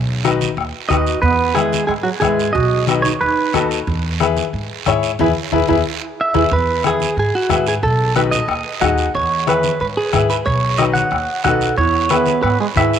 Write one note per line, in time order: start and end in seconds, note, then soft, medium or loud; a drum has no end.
0.00 0.44 B1 loud
0.24 0.47 D#4 medium
0.24 0.48 F#4 medium
0.24 0.48 B4 medium
0.24 bombo rim medium
0.24 high conga medium
0.24 short guiro medium
0.41 high conga medium
0.41 short guiro medium
0.57 0.70 D#2 medium
0.57 bombo rim medium
0.57 long guiro medium
0.89 1.16 D#2 medium
0.89 1.13 D#4 medium
0.89 1.13 F#4 medium
0.89 1.21 F#4 medium
0.89 1.13 B4 medium
0.89 1.21 D#5 medium
0.89 bombo low medium
0.89 bombo rim medium
0.89 high conga medium
0.89 short guiro medium
1.07 short guiro medium
1.22 1.76 E2 loud
1.22 1.53 B3 medium
1.22 1.56 B4 medium
1.22 bombo low medium
1.22 long guiro medium
1.55 1.86 G#3 medium
1.55 1.79 E4 medium
1.55 1.86 G#4 medium
1.55 1.79 G#4 medium
1.55 1.79 B4 medium
1.55 bombo rim medium
1.55 high conga medium
1.55 short guiro medium
1.73 high conga medium
1.73 short guiro medium
1.87 2.02 G#2 medium
1.87 1.95 G#3 medium
1.87 1.92 G#4 medium
1.87 bombo rim medium
1.87 long guiro medium
2.03 2.11 F#3 medium
2.03 2.08 F#4 medium
2.20 2.48 G#2 medium
2.20 2.52 G#3 medium
2.20 2.45 E4 medium
2.20 2.52 G#4 medium
2.20 2.45 G#4 medium
2.20 2.45 B4 medium
2.20 bombo low medium
2.20 bombo rim medium
2.20 high conga medium
2.20 short guiro medium
2.40 short guiro medium
2.53 3.08 B1 loud
2.53 2.85 F#4 medium
2.53 2.85 D#5 medium
2.53 bombo low medium
2.53 long guiro medium
2.87 3.11 D#4 medium
2.87 3.11 F#4 medium
2.87 3.12 B4 medium
2.87 bombo rim medium
2.87 high conga medium
2.87 short guiro medium
3.02 3.12 D#4 medium
3.02 3.07 C#5 medium
3.02 high conga medium
3.02 short guiro medium
3.20 3.34 D#2 medium
3.20 3.67 D#4 medium
3.20 3.67 B4 medium
3.20 long guiro medium
3.53 3.81 D#2 medium
3.53 3.77 D#4 medium
3.53 3.77 F#4 medium
3.53 3.77 A4 medium
3.53 bombo low medium
3.53 bombo rim medium
3.53 high conga medium
3.53 short guiro medium
3.71 short guiro medium
3.87 4.40 E2 loud
3.87 bombo low medium
3.87 long guiro medium
4.20 4.43 E4 medium
4.20 4.43 G#4 medium
4.20 4.44 B4 medium
4.20 bombo rim medium
4.20 high conga medium
4.20 short guiro medium
4.36 high conga medium
4.36 short guiro medium
4.53 4.66 G#2 medium
4.53 long guiro medium
4.86 5.13 G#2 medium
4.86 5.10 E4 medium
4.86 5.10 G#4 medium
4.86 5.10 C#5 medium
4.86 bombo low medium
4.86 bombo rim medium
4.86 high conga medium
4.86 short guiro medium
5.03 short guiro medium
5.19 5.32 E2 loud
5.19 5.30 E4 medium
5.19 5.28 E4 medium
5.19 5.30 G#4 medium
5.19 5.30 B4 medium
5.19 bombo low medium
5.19 high conga medium
5.19 long guiro loud
5.51 5.65 E2 medium
5.51 5.63 E4 medium
5.51 5.60 E4 medium
5.51 5.63 G#4 medium
5.51 5.63 B4 medium
5.51 bombo low medium
5.51 high conga medium
5.51 long guiro loud
5.68 5.81 E2 medium
5.68 5.76 E4 medium
5.68 5.79 E4 medium
5.68 5.79 G#4 medium
5.68 5.79 B4 medium
5.68 bombo low loud
5.68 high conga medium
5.68 long guiro loud
6.21 6.50 E5 medium
6.34 6.47 E2 medium
6.34 6.45 E4 loud
6.34 6.43 E4 medium
6.34 6.45 G#4 medium
6.34 6.45 B4 medium
6.34 bombo low medium
6.34 high conga medium
6.34 long guiro medium
6.51 7.04 E2 loud
6.51 6.83 B4 medium
6.51 bombo low medium
6.51 long guiro medium
6.84 7.07 E4 medium
6.84 7.07 G#4 medium
6.84 7.16 G#4 medium
6.84 7.08 B4 medium
6.84 bombo rim medium
6.84 high conga medium
6.84 short guiro medium
7.00 high conga medium
7.00 short guiro medium
7.17 7.30 G#2 medium
7.17 7.34 G#4 medium
7.17 long guiro medium
7.35 7.65 F#4 medium
7.49 7.76 G#2 medium
7.49 7.73 E4 medium
7.49 7.73 G#4 medium
7.49 7.73 B4 medium
7.49 bombo low medium
7.49 bombo rim medium
7.49 high conga medium
7.49 short guiro medium
7.67 7.73 G#4 medium
7.67 short guiro medium
7.83 8.36 B1 medium
7.83 8.16 A4 loud
7.83 bombo low medium
7.83 long guiro medium
8.15 8.39 D#4 medium
8.15 8.39 F#4 medium
8.15 8.39 B4 medium
8.15 8.21 B4 loud
8.15 bombo rim medium
8.15 high conga medium
8.15 short guiro medium
8.31 8.81 D#5 medium
8.31 low conga medium
8.31 short guiro medium
8.48 8.61 D#2 medium
8.48 bombo rim medium
8.48 long guiro medium
8.81 9.08 D#2 medium
8.81 9.04 D#4 medium
8.81 9.04 F#4 medium
8.81 9.05 G#4 medium
8.81 9.12 F#5 medium
8.81 bombo low medium
8.81 bombo rim medium
8.81 high conga medium
8.81 low conga medium
8.81 short guiro medium
8.98 short guiro medium
9.14 9.67 E2 loud
9.14 9.46 C#5 loud
9.14 bombo low medium
9.14 long guiro medium
9.47 9.70 E4 medium
9.47 9.70 G#4 medium
9.47 9.71 B4 medium
9.47 9.79 B4 loud
9.47 bombo rim medium
9.47 high conga medium
9.47 short guiro medium
9.63 high conga medium
9.63 short guiro medium
9.80 9.94 G#2 medium
9.80 9.86 B4 medium
9.80 long guiro medium
9.97 10.28 G#4 medium
10.13 10.40 G#2 medium
10.13 10.36 E4 medium
10.13 10.37 G#4 medium
10.13 10.37 B4 medium
10.13 bombo low medium
10.13 bombo rim medium
10.13 high conga medium
10.13 short guiro medium
10.30 10.35 B4 medium
10.30 short guiro medium
10.45 10.99 B1 loud
10.45 10.77 C#5 loud
10.45 bombo low medium
10.45 long guiro medium
10.78 11.02 D#4 medium
10.78 11.02 F#4 medium
10.78 11.02 B4 medium
10.78 10.83 D#5 loud
10.78 bombo rim medium
10.78 high conga medium
10.78 short guiro medium
10.93 11.43 F#5 medium
10.93 high conga medium
10.93 short guiro medium
11.11 11.25 D#2 medium
11.11 bombo rim medium
11.11 long guiro medium
11.44 11.71 B1 medium
11.44 11.68 D#4 medium
11.44 11.68 F#4 medium
11.44 11.76 A4 medium
11.44 11.69 B4 medium
11.44 11.75 F#5 medium
11.44 bombo low medium
11.44 bombo rim medium
11.44 high conga medium
11.44 low conga medium
11.44 short guiro medium
11.61 short guiro medium
11.76 12.30 E2 loud
11.76 12.09 E4 medium
11.76 12.12 C#5 medium
11.76 bombo low medium
11.76 long guiro medium
12.09 12.41 B3 medium
12.09 12.34 E4 medium
12.09 12.34 G#4 medium
12.09 12.41 B4 medium
12.09 12.35 B4 medium
12.09 bombo rim medium
12.09 high conga medium
12.09 short guiro medium
12.26 high conga medium
12.26 short guiro medium
12.43 12.57 G#2 medium
12.43 12.59 B3 medium
12.43 12.58 B4 loud
12.43 bombo rim medium
12.43 long guiro medium
12.60 12.67 G#3 medium
12.60 12.66 G#4 medium
12.76 12.99 G#2 medium
12.76 12.99 E4 medium
12.76 12.99 G#4 medium
12.76 12.99 B4 medium
12.76 12.99 E5 medium
12.76 bombo low medium
12.76 bombo rim medium
12.76 high conga medium
12.76 short guiro medium
12.93 short guiro medium